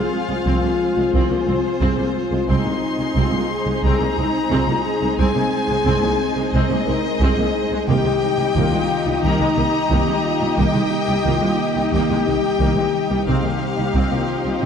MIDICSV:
0, 0, Header, 1, 9, 480
1, 0, Start_track
1, 0, Tempo, 674157
1, 1771, Time_signature, 4, 2, 24, 8
1, 10434, End_track
2, 0, Start_track
2, 0, Title_t, "Violin section"
2, 0, Program_c, 0, 48
2, 0, Note_on_c, 0, 77, 102
2, 789, Note_off_c, 0, 77, 0
2, 812, Note_on_c, 0, 72, 103
2, 1752, Note_off_c, 0, 72, 0
2, 1772, Note_on_c, 0, 84, 113
2, 2712, Note_off_c, 0, 84, 0
2, 2729, Note_on_c, 0, 82, 116
2, 3671, Note_off_c, 0, 82, 0
2, 3682, Note_on_c, 0, 80, 126
2, 4627, Note_off_c, 0, 80, 0
2, 4651, Note_on_c, 0, 75, 125
2, 5608, Note_on_c, 0, 79, 127
2, 5611, Note_off_c, 0, 75, 0
2, 6569, Note_off_c, 0, 79, 0
2, 6574, Note_on_c, 0, 82, 124
2, 7514, Note_off_c, 0, 82, 0
2, 7533, Note_on_c, 0, 79, 127
2, 8473, Note_off_c, 0, 79, 0
2, 8497, Note_on_c, 0, 79, 109
2, 9435, Note_off_c, 0, 79, 0
2, 9453, Note_on_c, 0, 77, 104
2, 10393, Note_off_c, 0, 77, 0
2, 10413, Note_on_c, 0, 75, 81
2, 10434, Note_off_c, 0, 75, 0
2, 10434, End_track
3, 0, Start_track
3, 0, Title_t, "Violin section"
3, 0, Program_c, 1, 48
3, 0, Note_on_c, 1, 68, 57
3, 0, Note_on_c, 1, 72, 56
3, 1736, Note_off_c, 1, 68, 0
3, 1737, Note_off_c, 1, 72, 0
3, 1766, Note_on_c, 1, 72, 68
3, 1771, Note_on_c, 1, 68, 67
3, 5580, Note_off_c, 1, 72, 0
3, 5583, Note_off_c, 1, 68, 0
3, 5619, Note_on_c, 1, 67, 83
3, 5619, Note_on_c, 1, 75, 82
3, 9426, Note_off_c, 1, 67, 0
3, 9448, Note_on_c, 1, 67, 70
3, 9451, Note_on_c, 1, 72, 69
3, 9455, Note_off_c, 1, 75, 0
3, 10434, Note_off_c, 1, 67, 0
3, 10434, Note_off_c, 1, 72, 0
3, 10434, End_track
4, 0, Start_track
4, 0, Title_t, "French horn section"
4, 0, Program_c, 2, 60
4, 0, Note_on_c, 2, 68, 76
4, 85, Note_off_c, 2, 68, 0
4, 97, Note_on_c, 2, 65, 81
4, 1292, Note_on_c, 2, 68, 65
4, 1294, Note_off_c, 2, 65, 0
4, 1527, Note_off_c, 2, 68, 0
4, 1527, Note_on_c, 2, 65, 72
4, 1764, Note_off_c, 2, 65, 0
4, 1775, Note_on_c, 2, 63, 80
4, 2253, Note_off_c, 2, 63, 0
4, 2261, Note_on_c, 2, 65, 78
4, 2495, Note_on_c, 2, 68, 79
4, 2496, Note_off_c, 2, 65, 0
4, 2723, Note_off_c, 2, 68, 0
4, 2731, Note_on_c, 2, 68, 81
4, 2971, Note_off_c, 2, 68, 0
4, 2971, Note_on_c, 2, 63, 80
4, 3208, Note_on_c, 2, 65, 76
4, 3211, Note_off_c, 2, 63, 0
4, 3442, Note_on_c, 2, 68, 89
4, 3445, Note_off_c, 2, 65, 0
4, 3682, Note_off_c, 2, 68, 0
4, 3691, Note_on_c, 2, 68, 98
4, 4529, Note_off_c, 2, 68, 0
4, 4650, Note_on_c, 2, 72, 94
4, 4883, Note_on_c, 2, 70, 88
4, 4886, Note_off_c, 2, 72, 0
4, 5127, Note_off_c, 2, 70, 0
4, 5135, Note_on_c, 2, 68, 87
4, 5613, Note_off_c, 2, 68, 0
4, 5619, Note_on_c, 2, 67, 95
4, 6085, Note_off_c, 2, 67, 0
4, 6097, Note_on_c, 2, 65, 92
4, 6572, Note_on_c, 2, 63, 85
4, 6574, Note_off_c, 2, 65, 0
4, 7051, Note_off_c, 2, 63, 0
4, 7053, Note_on_c, 2, 67, 80
4, 7284, Note_on_c, 2, 65, 81
4, 7287, Note_off_c, 2, 67, 0
4, 7522, Note_off_c, 2, 65, 0
4, 7527, Note_on_c, 2, 63, 80
4, 7769, Note_off_c, 2, 63, 0
4, 7770, Note_on_c, 2, 67, 85
4, 8008, Note_on_c, 2, 65, 84
4, 8010, Note_off_c, 2, 67, 0
4, 8244, Note_on_c, 2, 63, 73
4, 8245, Note_off_c, 2, 65, 0
4, 8476, Note_on_c, 2, 67, 91
4, 8488, Note_off_c, 2, 63, 0
4, 9424, Note_off_c, 2, 67, 0
4, 9451, Note_on_c, 2, 56, 78
4, 9685, Note_on_c, 2, 67, 73
4, 9686, Note_off_c, 2, 56, 0
4, 9923, Note_on_c, 2, 65, 92
4, 9928, Note_off_c, 2, 67, 0
4, 10434, Note_off_c, 2, 65, 0
4, 10434, End_track
5, 0, Start_track
5, 0, Title_t, "Synth drone"
5, 0, Program_c, 3, 95
5, 0, Note_on_c, 3, 56, 70
5, 0, Note_on_c, 3, 60, 74
5, 0, Note_on_c, 3, 65, 74
5, 0, Note_on_c, 3, 72, 74
5, 1743, Note_off_c, 3, 60, 0
5, 1743, Note_off_c, 3, 72, 0
5, 1744, Note_off_c, 3, 65, 0
5, 1745, Note_off_c, 3, 56, 0
5, 1779, Note_on_c, 3, 56, 80
5, 1779, Note_on_c, 3, 60, 78
5, 1780, Note_on_c, 3, 63, 76
5, 1780, Note_on_c, 3, 72, 78
5, 5586, Note_off_c, 3, 56, 0
5, 5586, Note_off_c, 3, 60, 0
5, 5587, Note_off_c, 3, 72, 0
5, 5607, Note_off_c, 3, 63, 0
5, 5616, Note_on_c, 3, 58, 80
5, 5616, Note_on_c, 3, 63, 81
5, 5617, Note_on_c, 3, 55, 82
5, 5617, Note_on_c, 3, 75, 81
5, 9425, Note_off_c, 3, 63, 0
5, 9448, Note_on_c, 3, 60, 80
5, 9449, Note_on_c, 3, 67, 79
5, 9452, Note_on_c, 3, 63, 81
5, 9454, Note_off_c, 3, 55, 0
5, 9454, Note_off_c, 3, 58, 0
5, 9454, Note_off_c, 3, 75, 0
5, 9454, Note_on_c, 3, 72, 76
5, 10434, Note_off_c, 3, 60, 0
5, 10434, Note_off_c, 3, 63, 0
5, 10434, Note_off_c, 3, 67, 0
5, 10434, Note_off_c, 3, 72, 0
5, 10434, End_track
6, 0, Start_track
6, 0, Title_t, "Viola section"
6, 0, Program_c, 4, 48
6, 0, Note_on_c, 4, 65, 58
6, 211, Note_on_c, 4, 56, 53
6, 259, Note_off_c, 4, 56, 0
6, 329, Note_on_c, 4, 60, 68
6, 441, Note_off_c, 4, 60, 0
6, 450, Note_on_c, 4, 58, 54
6, 498, Note_off_c, 4, 58, 0
6, 687, Note_on_c, 4, 56, 52
6, 735, Note_off_c, 4, 56, 0
6, 810, Note_on_c, 4, 60, 84
6, 922, Note_off_c, 4, 60, 0
6, 928, Note_on_c, 4, 58, 60
6, 977, Note_off_c, 4, 58, 0
6, 1053, Note_on_c, 4, 60, 61
6, 1100, Note_off_c, 4, 60, 0
6, 1291, Note_on_c, 4, 60, 85
6, 1402, Note_off_c, 4, 60, 0
6, 1408, Note_on_c, 4, 58, 68
6, 1457, Note_off_c, 4, 58, 0
6, 1650, Note_on_c, 4, 56, 69
6, 1698, Note_off_c, 4, 56, 0
6, 1739, Note_off_c, 4, 65, 0
6, 1767, Note_on_c, 4, 60, 80
6, 1767, Note_on_c, 4, 63, 66
6, 1881, Note_off_c, 4, 60, 0
6, 1890, Note_on_c, 4, 58, 61
6, 1938, Note_off_c, 4, 58, 0
6, 2130, Note_on_c, 4, 56, 65
6, 2178, Note_off_c, 4, 56, 0
6, 2250, Note_on_c, 4, 60, 72
6, 2362, Note_off_c, 4, 60, 0
6, 2374, Note_on_c, 4, 58, 58
6, 2422, Note_off_c, 4, 58, 0
6, 2608, Note_on_c, 4, 56, 55
6, 2656, Note_off_c, 4, 56, 0
6, 2734, Note_on_c, 4, 60, 93
6, 2844, Note_off_c, 4, 60, 0
6, 2857, Note_on_c, 4, 58, 62
6, 2904, Note_off_c, 4, 58, 0
6, 2979, Note_on_c, 4, 60, 72
6, 3026, Note_off_c, 4, 60, 0
6, 3214, Note_on_c, 4, 60, 89
6, 3324, Note_off_c, 4, 60, 0
6, 3334, Note_on_c, 4, 58, 74
6, 3382, Note_off_c, 4, 58, 0
6, 3577, Note_on_c, 4, 56, 66
6, 3624, Note_off_c, 4, 56, 0
6, 3690, Note_on_c, 4, 60, 78
6, 3802, Note_off_c, 4, 60, 0
6, 3810, Note_on_c, 4, 58, 58
6, 3858, Note_off_c, 4, 58, 0
6, 4049, Note_on_c, 4, 56, 70
6, 4097, Note_off_c, 4, 56, 0
6, 4167, Note_on_c, 4, 60, 84
6, 4280, Note_off_c, 4, 60, 0
6, 4289, Note_on_c, 4, 58, 73
6, 4338, Note_off_c, 4, 58, 0
6, 4531, Note_on_c, 4, 56, 68
6, 4579, Note_off_c, 4, 56, 0
6, 4654, Note_on_c, 4, 60, 88
6, 4764, Note_off_c, 4, 60, 0
6, 4777, Note_on_c, 4, 58, 69
6, 4824, Note_off_c, 4, 58, 0
6, 4897, Note_on_c, 4, 60, 71
6, 4944, Note_off_c, 4, 60, 0
6, 5137, Note_on_c, 4, 60, 98
6, 5246, Note_off_c, 4, 60, 0
6, 5256, Note_on_c, 4, 58, 71
6, 5303, Note_off_c, 4, 58, 0
6, 5499, Note_on_c, 4, 56, 82
6, 5545, Note_off_c, 4, 56, 0
6, 5580, Note_off_c, 4, 63, 0
6, 5615, Note_on_c, 4, 58, 83
6, 5617, Note_on_c, 4, 63, 75
6, 5725, Note_off_c, 4, 58, 0
6, 5731, Note_on_c, 4, 56, 69
6, 5779, Note_off_c, 4, 56, 0
6, 5974, Note_on_c, 4, 55, 62
6, 6021, Note_off_c, 4, 55, 0
6, 6097, Note_on_c, 4, 58, 85
6, 6206, Note_off_c, 4, 58, 0
6, 6218, Note_on_c, 4, 56, 62
6, 6265, Note_off_c, 4, 56, 0
6, 6452, Note_on_c, 4, 55, 61
6, 6499, Note_off_c, 4, 55, 0
6, 6573, Note_on_c, 4, 58, 106
6, 6684, Note_off_c, 4, 58, 0
6, 6698, Note_on_c, 4, 56, 67
6, 6744, Note_off_c, 4, 56, 0
6, 6812, Note_on_c, 4, 58, 84
6, 6860, Note_off_c, 4, 58, 0
6, 7054, Note_on_c, 4, 58, 80
6, 7164, Note_off_c, 4, 58, 0
6, 7173, Note_on_c, 4, 56, 78
6, 7221, Note_off_c, 4, 56, 0
6, 7410, Note_on_c, 4, 55, 67
6, 7458, Note_off_c, 4, 55, 0
6, 7526, Note_on_c, 4, 58, 80
6, 7640, Note_off_c, 4, 58, 0
6, 7641, Note_on_c, 4, 56, 59
6, 7691, Note_off_c, 4, 56, 0
6, 7888, Note_on_c, 4, 55, 68
6, 7936, Note_off_c, 4, 55, 0
6, 8006, Note_on_c, 4, 58, 86
6, 8120, Note_off_c, 4, 58, 0
6, 8127, Note_on_c, 4, 56, 54
6, 8176, Note_off_c, 4, 56, 0
6, 8371, Note_on_c, 4, 55, 63
6, 8419, Note_off_c, 4, 55, 0
6, 8499, Note_on_c, 4, 58, 91
6, 8607, Note_off_c, 4, 58, 0
6, 8624, Note_on_c, 4, 56, 71
6, 8669, Note_off_c, 4, 56, 0
6, 8743, Note_on_c, 4, 58, 70
6, 8788, Note_off_c, 4, 58, 0
6, 8974, Note_on_c, 4, 58, 74
6, 9084, Note_off_c, 4, 58, 0
6, 9097, Note_on_c, 4, 56, 62
6, 9144, Note_off_c, 4, 56, 0
6, 9326, Note_on_c, 4, 55, 64
6, 9375, Note_off_c, 4, 55, 0
6, 9425, Note_off_c, 4, 63, 0
6, 9448, Note_on_c, 4, 63, 66
6, 9449, Note_on_c, 4, 60, 75
6, 9561, Note_off_c, 4, 60, 0
6, 9568, Note_on_c, 4, 58, 51
6, 9617, Note_off_c, 4, 58, 0
6, 9814, Note_on_c, 4, 55, 59
6, 9862, Note_off_c, 4, 55, 0
6, 9930, Note_on_c, 4, 60, 62
6, 10042, Note_off_c, 4, 60, 0
6, 10053, Note_on_c, 4, 58, 57
6, 10100, Note_off_c, 4, 58, 0
6, 10289, Note_on_c, 4, 55, 56
6, 10337, Note_off_c, 4, 55, 0
6, 10410, Note_on_c, 4, 60, 74
6, 10434, Note_off_c, 4, 60, 0
6, 10434, Note_off_c, 4, 63, 0
6, 10434, End_track
7, 0, Start_track
7, 0, Title_t, "Synth pluck"
7, 0, Program_c, 5, 84
7, 209, Note_on_c, 5, 56, 66
7, 282, Note_off_c, 5, 56, 0
7, 329, Note_on_c, 5, 53, 92
7, 402, Note_off_c, 5, 53, 0
7, 447, Note_on_c, 5, 56, 72
7, 520, Note_off_c, 5, 56, 0
7, 688, Note_on_c, 5, 65, 70
7, 761, Note_off_c, 5, 65, 0
7, 806, Note_on_c, 5, 53, 92
7, 880, Note_off_c, 5, 53, 0
7, 928, Note_on_c, 5, 65, 68
7, 1001, Note_off_c, 5, 65, 0
7, 1048, Note_on_c, 5, 60, 60
7, 1121, Note_off_c, 5, 60, 0
7, 1290, Note_on_c, 5, 53, 89
7, 1362, Note_off_c, 5, 53, 0
7, 1413, Note_on_c, 5, 60, 68
7, 1485, Note_off_c, 5, 60, 0
7, 1651, Note_on_c, 5, 56, 66
7, 1723, Note_off_c, 5, 56, 0
7, 1771, Note_on_c, 5, 56, 93
7, 1843, Note_off_c, 5, 56, 0
7, 1891, Note_on_c, 5, 60, 72
7, 1963, Note_off_c, 5, 60, 0
7, 2131, Note_on_c, 5, 60, 71
7, 2203, Note_off_c, 5, 60, 0
7, 2255, Note_on_c, 5, 56, 103
7, 2326, Note_off_c, 5, 56, 0
7, 2374, Note_on_c, 5, 60, 73
7, 2445, Note_off_c, 5, 60, 0
7, 2615, Note_on_c, 5, 68, 67
7, 2686, Note_off_c, 5, 68, 0
7, 2735, Note_on_c, 5, 56, 99
7, 2806, Note_off_c, 5, 56, 0
7, 2855, Note_on_c, 5, 68, 72
7, 2926, Note_off_c, 5, 68, 0
7, 2977, Note_on_c, 5, 63, 65
7, 3047, Note_off_c, 5, 63, 0
7, 3214, Note_on_c, 5, 56, 96
7, 3285, Note_off_c, 5, 56, 0
7, 3336, Note_on_c, 5, 63, 69
7, 3406, Note_off_c, 5, 63, 0
7, 3573, Note_on_c, 5, 60, 69
7, 3645, Note_off_c, 5, 60, 0
7, 3695, Note_on_c, 5, 56, 104
7, 3766, Note_off_c, 5, 56, 0
7, 3812, Note_on_c, 5, 60, 74
7, 3884, Note_off_c, 5, 60, 0
7, 4053, Note_on_c, 5, 60, 68
7, 4125, Note_off_c, 5, 60, 0
7, 4174, Note_on_c, 5, 56, 101
7, 4245, Note_off_c, 5, 56, 0
7, 4292, Note_on_c, 5, 60, 73
7, 4364, Note_off_c, 5, 60, 0
7, 4537, Note_on_c, 5, 68, 74
7, 4607, Note_off_c, 5, 68, 0
7, 4654, Note_on_c, 5, 56, 98
7, 4725, Note_off_c, 5, 56, 0
7, 4774, Note_on_c, 5, 68, 76
7, 4845, Note_off_c, 5, 68, 0
7, 4891, Note_on_c, 5, 63, 63
7, 4963, Note_off_c, 5, 63, 0
7, 5132, Note_on_c, 5, 56, 97
7, 5204, Note_off_c, 5, 56, 0
7, 5254, Note_on_c, 5, 63, 69
7, 5325, Note_off_c, 5, 63, 0
7, 5494, Note_on_c, 5, 60, 69
7, 5565, Note_off_c, 5, 60, 0
7, 5612, Note_on_c, 5, 51, 98
7, 5684, Note_off_c, 5, 51, 0
7, 5734, Note_on_c, 5, 55, 72
7, 5805, Note_off_c, 5, 55, 0
7, 5973, Note_on_c, 5, 55, 74
7, 6044, Note_off_c, 5, 55, 0
7, 6090, Note_on_c, 5, 51, 104
7, 6162, Note_off_c, 5, 51, 0
7, 6210, Note_on_c, 5, 55, 69
7, 6282, Note_off_c, 5, 55, 0
7, 6452, Note_on_c, 5, 63, 71
7, 6523, Note_off_c, 5, 63, 0
7, 6569, Note_on_c, 5, 51, 106
7, 6642, Note_off_c, 5, 51, 0
7, 6689, Note_on_c, 5, 63, 77
7, 6762, Note_off_c, 5, 63, 0
7, 6811, Note_on_c, 5, 58, 68
7, 6883, Note_off_c, 5, 58, 0
7, 7053, Note_on_c, 5, 51, 102
7, 7124, Note_off_c, 5, 51, 0
7, 7171, Note_on_c, 5, 58, 66
7, 7243, Note_off_c, 5, 58, 0
7, 7412, Note_on_c, 5, 55, 71
7, 7483, Note_off_c, 5, 55, 0
7, 7532, Note_on_c, 5, 51, 95
7, 7604, Note_off_c, 5, 51, 0
7, 7650, Note_on_c, 5, 55, 75
7, 7722, Note_off_c, 5, 55, 0
7, 7891, Note_on_c, 5, 55, 78
7, 7963, Note_off_c, 5, 55, 0
7, 8011, Note_on_c, 5, 51, 95
7, 8083, Note_off_c, 5, 51, 0
7, 8133, Note_on_c, 5, 55, 74
7, 8204, Note_off_c, 5, 55, 0
7, 8370, Note_on_c, 5, 63, 71
7, 8442, Note_off_c, 5, 63, 0
7, 8489, Note_on_c, 5, 51, 98
7, 8562, Note_off_c, 5, 51, 0
7, 8612, Note_on_c, 5, 63, 73
7, 8684, Note_off_c, 5, 63, 0
7, 8733, Note_on_c, 5, 58, 65
7, 8804, Note_off_c, 5, 58, 0
7, 8972, Note_on_c, 5, 51, 100
7, 9044, Note_off_c, 5, 51, 0
7, 9097, Note_on_c, 5, 58, 69
7, 9167, Note_off_c, 5, 58, 0
7, 9334, Note_on_c, 5, 55, 70
7, 9405, Note_off_c, 5, 55, 0
7, 9455, Note_on_c, 5, 48, 98
7, 9526, Note_off_c, 5, 48, 0
7, 9573, Note_on_c, 5, 51, 73
7, 9644, Note_off_c, 5, 51, 0
7, 9814, Note_on_c, 5, 51, 72
7, 9885, Note_off_c, 5, 51, 0
7, 9932, Note_on_c, 5, 48, 106
7, 10003, Note_off_c, 5, 48, 0
7, 10056, Note_on_c, 5, 51, 70
7, 10127, Note_off_c, 5, 51, 0
7, 10294, Note_on_c, 5, 60, 67
7, 10365, Note_off_c, 5, 60, 0
7, 10434, End_track
8, 0, Start_track
8, 0, Title_t, "Cello section"
8, 0, Program_c, 6, 48
8, 213, Note_on_c, 6, 36, 58
8, 260, Note_off_c, 6, 36, 0
8, 331, Note_on_c, 6, 36, 79
8, 379, Note_off_c, 6, 36, 0
8, 452, Note_on_c, 6, 36, 60
8, 500, Note_off_c, 6, 36, 0
8, 693, Note_on_c, 6, 36, 60
8, 741, Note_off_c, 6, 36, 0
8, 813, Note_on_c, 6, 36, 81
8, 860, Note_off_c, 6, 36, 0
8, 933, Note_on_c, 6, 36, 57
8, 981, Note_off_c, 6, 36, 0
8, 1054, Note_on_c, 6, 36, 58
8, 1101, Note_off_c, 6, 36, 0
8, 1292, Note_on_c, 6, 36, 82
8, 1340, Note_off_c, 6, 36, 0
8, 1412, Note_on_c, 6, 36, 61
8, 1460, Note_off_c, 6, 36, 0
8, 1652, Note_on_c, 6, 36, 64
8, 1700, Note_off_c, 6, 36, 0
8, 1773, Note_on_c, 6, 36, 87
8, 1821, Note_off_c, 6, 36, 0
8, 1893, Note_on_c, 6, 36, 61
8, 1940, Note_off_c, 6, 36, 0
8, 2133, Note_on_c, 6, 36, 58
8, 2180, Note_off_c, 6, 36, 0
8, 2250, Note_on_c, 6, 36, 87
8, 2298, Note_off_c, 6, 36, 0
8, 2371, Note_on_c, 6, 36, 67
8, 2419, Note_off_c, 6, 36, 0
8, 2613, Note_on_c, 6, 36, 68
8, 2660, Note_off_c, 6, 36, 0
8, 2734, Note_on_c, 6, 36, 91
8, 2781, Note_off_c, 6, 36, 0
8, 2854, Note_on_c, 6, 36, 64
8, 2901, Note_off_c, 6, 36, 0
8, 2972, Note_on_c, 6, 36, 65
8, 3019, Note_off_c, 6, 36, 0
8, 3211, Note_on_c, 6, 36, 94
8, 3259, Note_off_c, 6, 36, 0
8, 3329, Note_on_c, 6, 36, 68
8, 3378, Note_off_c, 6, 36, 0
8, 3571, Note_on_c, 6, 36, 70
8, 3619, Note_off_c, 6, 36, 0
8, 3690, Note_on_c, 6, 36, 88
8, 3738, Note_off_c, 6, 36, 0
8, 3811, Note_on_c, 6, 36, 67
8, 3859, Note_off_c, 6, 36, 0
8, 4050, Note_on_c, 6, 36, 68
8, 4098, Note_off_c, 6, 36, 0
8, 4168, Note_on_c, 6, 36, 90
8, 4217, Note_off_c, 6, 36, 0
8, 4290, Note_on_c, 6, 36, 78
8, 4338, Note_off_c, 6, 36, 0
8, 4529, Note_on_c, 6, 36, 68
8, 4577, Note_off_c, 6, 36, 0
8, 4651, Note_on_c, 6, 36, 98
8, 4699, Note_off_c, 6, 36, 0
8, 4770, Note_on_c, 6, 36, 66
8, 4818, Note_off_c, 6, 36, 0
8, 4890, Note_on_c, 6, 36, 67
8, 4938, Note_off_c, 6, 36, 0
8, 5130, Note_on_c, 6, 36, 97
8, 5178, Note_off_c, 6, 36, 0
8, 5254, Note_on_c, 6, 36, 70
8, 5302, Note_off_c, 6, 36, 0
8, 5488, Note_on_c, 6, 36, 69
8, 5537, Note_off_c, 6, 36, 0
8, 5606, Note_on_c, 6, 36, 94
8, 5655, Note_off_c, 6, 36, 0
8, 5732, Note_on_c, 6, 36, 69
8, 5780, Note_off_c, 6, 36, 0
8, 5970, Note_on_c, 6, 36, 67
8, 6018, Note_off_c, 6, 36, 0
8, 6089, Note_on_c, 6, 36, 97
8, 6138, Note_off_c, 6, 36, 0
8, 6210, Note_on_c, 6, 36, 73
8, 6259, Note_off_c, 6, 36, 0
8, 6449, Note_on_c, 6, 36, 68
8, 6497, Note_off_c, 6, 36, 0
8, 6569, Note_on_c, 6, 36, 99
8, 6617, Note_off_c, 6, 36, 0
8, 6692, Note_on_c, 6, 36, 66
8, 6740, Note_off_c, 6, 36, 0
8, 6809, Note_on_c, 6, 36, 63
8, 6858, Note_off_c, 6, 36, 0
8, 7050, Note_on_c, 6, 36, 96
8, 7099, Note_off_c, 6, 36, 0
8, 7169, Note_on_c, 6, 36, 68
8, 7217, Note_off_c, 6, 36, 0
8, 7411, Note_on_c, 6, 36, 68
8, 7459, Note_off_c, 6, 36, 0
8, 7529, Note_on_c, 6, 36, 92
8, 7577, Note_off_c, 6, 36, 0
8, 7654, Note_on_c, 6, 36, 65
8, 7701, Note_off_c, 6, 36, 0
8, 7893, Note_on_c, 6, 36, 68
8, 7941, Note_off_c, 6, 36, 0
8, 8014, Note_on_c, 6, 36, 91
8, 8062, Note_off_c, 6, 36, 0
8, 8136, Note_on_c, 6, 36, 69
8, 8183, Note_off_c, 6, 36, 0
8, 8372, Note_on_c, 6, 36, 64
8, 8420, Note_off_c, 6, 36, 0
8, 8492, Note_on_c, 6, 36, 85
8, 8540, Note_off_c, 6, 36, 0
8, 8613, Note_on_c, 6, 36, 60
8, 8660, Note_off_c, 6, 36, 0
8, 8736, Note_on_c, 6, 36, 63
8, 8783, Note_off_c, 6, 36, 0
8, 8973, Note_on_c, 6, 36, 88
8, 9021, Note_off_c, 6, 36, 0
8, 9090, Note_on_c, 6, 36, 64
8, 9139, Note_off_c, 6, 36, 0
8, 9336, Note_on_c, 6, 36, 62
8, 9383, Note_off_c, 6, 36, 0
8, 9450, Note_on_c, 6, 36, 82
8, 9498, Note_off_c, 6, 36, 0
8, 9570, Note_on_c, 6, 36, 61
8, 9618, Note_off_c, 6, 36, 0
8, 9814, Note_on_c, 6, 36, 58
8, 9861, Note_off_c, 6, 36, 0
8, 9932, Note_on_c, 6, 36, 78
8, 9980, Note_off_c, 6, 36, 0
8, 10054, Note_on_c, 6, 36, 59
8, 10101, Note_off_c, 6, 36, 0
8, 10296, Note_on_c, 6, 36, 57
8, 10343, Note_off_c, 6, 36, 0
8, 10434, End_track
9, 0, Start_track
9, 0, Title_t, "Double bass section"
9, 0, Program_c, 7, 48
9, 327, Note_on_c, 7, 36, 75
9, 376, Note_off_c, 7, 36, 0
9, 811, Note_on_c, 7, 36, 79
9, 859, Note_off_c, 7, 36, 0
9, 1047, Note_on_c, 7, 36, 61
9, 1096, Note_off_c, 7, 36, 0
9, 1288, Note_on_c, 7, 36, 91
9, 1336, Note_off_c, 7, 36, 0
9, 1770, Note_on_c, 7, 36, 85
9, 1818, Note_off_c, 7, 36, 0
9, 2247, Note_on_c, 7, 36, 89
9, 2296, Note_off_c, 7, 36, 0
9, 2731, Note_on_c, 7, 36, 87
9, 2779, Note_off_c, 7, 36, 0
9, 2969, Note_on_c, 7, 36, 64
9, 3018, Note_off_c, 7, 36, 0
9, 3212, Note_on_c, 7, 36, 90
9, 3260, Note_off_c, 7, 36, 0
9, 3692, Note_on_c, 7, 36, 98
9, 3740, Note_off_c, 7, 36, 0
9, 4168, Note_on_c, 7, 36, 94
9, 4217, Note_off_c, 7, 36, 0
9, 4654, Note_on_c, 7, 36, 85
9, 4701, Note_off_c, 7, 36, 0
9, 4892, Note_on_c, 7, 36, 67
9, 4940, Note_off_c, 7, 36, 0
9, 5130, Note_on_c, 7, 36, 98
9, 5178, Note_off_c, 7, 36, 0
9, 5611, Note_on_c, 7, 36, 102
9, 5659, Note_off_c, 7, 36, 0
9, 6091, Note_on_c, 7, 36, 101
9, 6139, Note_off_c, 7, 36, 0
9, 6572, Note_on_c, 7, 36, 83
9, 6620, Note_off_c, 7, 36, 0
9, 6812, Note_on_c, 7, 36, 65
9, 6860, Note_off_c, 7, 36, 0
9, 7051, Note_on_c, 7, 36, 97
9, 7099, Note_off_c, 7, 36, 0
9, 7533, Note_on_c, 7, 36, 90
9, 7580, Note_off_c, 7, 36, 0
9, 8011, Note_on_c, 7, 36, 86
9, 8059, Note_off_c, 7, 36, 0
9, 8493, Note_on_c, 7, 36, 85
9, 8540, Note_off_c, 7, 36, 0
9, 8731, Note_on_c, 7, 36, 61
9, 8779, Note_off_c, 7, 36, 0
9, 8971, Note_on_c, 7, 36, 87
9, 9019, Note_off_c, 7, 36, 0
9, 9450, Note_on_c, 7, 36, 83
9, 9498, Note_off_c, 7, 36, 0
9, 9929, Note_on_c, 7, 36, 80
9, 9977, Note_off_c, 7, 36, 0
9, 10410, Note_on_c, 7, 36, 71
9, 10434, Note_off_c, 7, 36, 0
9, 10434, End_track
0, 0, End_of_file